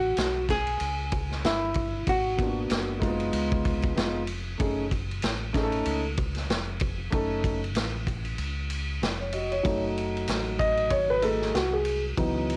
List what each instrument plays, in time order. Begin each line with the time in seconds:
Already playing: fingered electric bass A1, hollow-body jazz guitar F#4
0.17 fingered electric bass B1, snare, hi-hat pedal, ride
0.49 hollow-body jazz guitar G#4, kick, snare, ride
0.67 ride
0.80 fingered electric bass C#2, ride
1.12 kick, ride
1.31 snare
1.44 fingered electric bass G1, hollow-body jazz guitar E4, snare, hi-hat pedal, ride
1.74 kick, ride
2.07 fingered electric bass G#1, hollow-body jazz guitar F#4, kick, ride
2.37 grand piano A#3 B3 D4 F4, kick, ride
2.47 grand piano F#4
2.70 fingered electric bass F#1, snare, hi-hat pedal, ride
2.99 grand piano G#3 A#3 D#4 F4, kick, ride
3.07 grand piano B3
3.20 ride
3.33 fingered electric bass C#2, ride
3.52 kick
3.65 kick, ride
3.82 kick, ride
3.95 fingered electric bass F1, grand piano G#3 B3 D#4 F4, snare, hi-hat pedal, ride
4.27 ride
4.58 fingered electric bass F#1, grand piano A3 C#4 D#4 G#4, kick, ride
4.91 kick, ride
5.11 ride
5.22 fingered electric bass A1, snare, hi-hat pedal, ride
5.53 grand piano A3 C#4 D#4 G#4, kick, snare, ride
5.63 grand piano A4
5.72 ride
5.85 fingered electric bass C#2, ride
6.17 kick, ride
6.35 snare, ride
6.49 fingered electric bass F1, snare, hi-hat pedal, ride
6.80 kick, ride
7.10 fingered electric bass F#1, grand piano A3 C#4 D#4 A4, kick, ride
7.44 kick, ride
7.64 ride
7.75 fingered electric bass A1, snare, hi-hat pedal, ride
8.07 kick, ride
8.25 ride
8.38 fingered electric bass C#2, ride
8.70 ride
9.01 fingered electric bass F1, snare, hi-hat pedal, ride
9.20 grand piano C#5
9.33 grand piano F#4 D#5, ride
9.52 grand piano C#5, ride
9.63 fingered electric bass F#1, grand piano F#3 A3 D#4, kick, ride
9.98 ride
10.17 ride
10.28 fingered electric bass A1, snare, hi-hat pedal, ride
10.59 grand piano D#5, kick, ride
10.77 ride
10.90 fingered electric bass G#1, grand piano C#5, kick, ride
11.10 grand piano B4
11.22 grand piano A3 D#4 G#4 A4, ride
11.42 snare
11.55 fingered electric bass C2, grand piano F#4, snare, hi-hat pedal, ride
11.73 grand piano G#4
11.85 ride
12.17 fingered electric bass C#2, grand piano E3 F#3 B3 D#4, kick, ride
12.50 ride